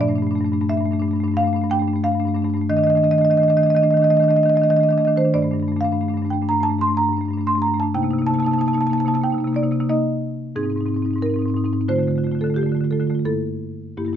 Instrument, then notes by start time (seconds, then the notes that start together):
marimba
0.01 G2 A3 D4 D5
0.08 G2 A3 D4
0.16 A3 D4
0.22 G2 D4
0.27 A3
0.31 G2 D4
0.36 A3 D4
0.41 G2 A3
0.46 D4
0.51 G2 A3 D4
0.61 G2 A3 D4
0.69 G2 A3 D4 E5
0.77 G2 A3 D4
0.85 A3 D4
0.91 G2 A3 D4
1.00 G2 A3 D4
1.08 A3 D4
1.13 G2 D4
1.20 G2 A3
1.24 A3 D4
1.31 G2 D4
1.36 A3 D4 F5
1.43 G2 A3
1.47 D4
1.53 G2 A3 D4
1.62 G2 A3 D4
1.70 G2 A3 D4 G5
1.79 G2 A3 D4
1.87 A3 D4
1.93 G2 A3 D4
2.04 G2 A3 D4 F5
2.12 G2 A3 D4
2.20 A3 D4
2.25 G2 A3 D4
2.35 G2 A3 D4
2.42 G2 A3 D4
2.50 A3 D4
2.55 G2 D4
2.62 A3
2.70 D#3 A3 D4 D#5
2.77 D#3 A3 D4 D#5
2.84 D#3 A3 D4 D#5
2.90 D#5
2.95 D#3 A3 D4 D#5
3.03 D#3 A3 D4 D#5
3.10 D#3 A3 D4 D#5
3.18 D#3 A3 D4 D#5
3.25 D4 D#5
3.30 D#3 A3 D4 D#5
3.37 D#3 A3 D#5
3.42 D4 D#5
3.48 D#3 A3 D4 D#5
3.57 D#3 A3 D4 D#5
3.63 D#3 A3 D4 D#5
3.70 D#5
3.74 D#3 A3 D4 D#5
3.82 D#3 A3 D4 D#5
3.91 D#3 A3 D4 D#5
3.97 D4 D#5
4.02 D#3 A3 D#5
4.07 A3 D4 D#5
4.11 D#3 D4
4.17 D#3 A3 D#5
4.22 D4 D#5
4.28 D#3 A3 D4 D#5
4.36 D#3 A3 D4 D#5
4.43 D#3 A3 D4 D#5
4.49 D4 D#5
4.54 D#3 A3 D#5
4.60 D#3 D4 D#5
4.64 A3
4.68 D#3 A3 D4 D#5
4.76 D#3 D4 D#5
4.81 A3 D#5
4.85 D4
4.89 D#3 A3 D4 D#5
4.98 D#3 A3 D4 D#5
5.05 D#3 A3 D4 D#5
5.16 D#3 A3 D4 C5
5.25 D#3 D4
5.34 G2 A3 D4 D5
5.42 G2 A3 D4
5.51 G2 A3 D4
5.60 G2 A3 D4
5.68 A3 D4
5.72 G2
5.76 A3 D4
5.81 G2 D4 F5
5.85 A3
5.92 G2 A3 D4
6.01 G2 A3 D4
6.08 A3 D4
6.13 G2 A3
6.18 D4
6.22 G2 A3 D4
6.30 G2 A3 D4 G5
6.42 G2 A3 D4
6.49 G2 A3 D4 A#5
6.58 G2 A3 D4
6.63 D4 A5
6.69 G2 A3
6.74 D4
6.78 G2 A3 D4 C6
6.87 G2 A3 D4
6.95 G2 A3 D4 A#5
7.03 A3
7.08 G2 D4
7.13 A3 D4
7.18 G2 A3
7.25 G2 D4
7.30 A3 D4
7.37 G2 A3 D4
7.47 G2 A3 D4 C6
7.55 G2 A3 D4
7.62 A3 A#5
7.67 G2 D4
7.74 G2 A3 D4
7.80 A3 D4 A5
7.94 C3 A#3 D#4 G5
8.02 C3 A#3 D#4
8.10 C3 A#3 D#4
8.18 C3 A#3 D#4
8.27 A#3 D#4 A5
8.31 C3 A#3 A5
8.35 C3 D#4
8.40 A#3 A5
8.45 C3 D#4 A5
8.51 A#3 D#4 A5
8.58 C3 A#3 D#4 A5
8.66 C3 A#3 D#4 A5
8.74 C3 A#3 D#4 A5
8.81 A#3 D#4 A5
8.86 C3 A5
8.90 A#3 D#4 A5
8.95 C3 A#3 D#4
9.00 A5
9.05 C3 A#3 D#4 A5
9.14 C3 A#3 D#4 A5
9.22 C3 A#3 D#4 G5
9.30 A#3 D#4
9.34 C3
9.38 A#3 D#4
9.44 C3 A#3 D#4
9.53 C3 A#3 D#4 D5
9.63 C3 A#3 D#4
9.71 C3 A#3 D#4
9.80 C3 A#3 D#4
9.89 C3 A#3 D#4 D#5
10.56 G#2 C4 D#4 G#4
10.63 G#2 C4 D#4
10.70 C4 D#4
10.76 G#2 C4
10.81 D#4
10.86 G#2 C4 D#4
10.94 G#2 C4 D#4
11.02 G#2 C4 D#4
11.11 C4 D#4
11.16 G#2 C4
11.22 G#2 C4 D#4 A#4
11.30 D#4
11.34 G#2 C4
11.39 C4 D#4
11.46 G#2 D#4
11.50 C4
11.55 G#2 C4 D#4
11.64 G#2 C4 D#4
11.73 G#2 C4 D#4
11.81 C4 D#4
11.88 D3 A3 F4 C5
11.96 D3 A3 F4
12.03 F4
12.08 D3 A3 F4
12.16 D3 A3 F4
12.24 D3 A3 F4
12.32 D3 A3 F4
12.39 A3 F4 A4
12.44 D3 F4
12.50 A3
12.54 D3 F4 G4
12.58 A3 F4
12.63 D3 A3
12.69 D3 F4
12.75 A3 F4
12.81 D3 A3 F4
12.91 D3 A3 F4 A4
13.00 D3 A3 F4
13.07 D3 A3 F4
13.15 F4
13.19 A3
13.25 G2 A#3 E4 A4
13.97 G2 A#3 E4 G4
14.05 G2 A#3 E4 G4
14.13 E4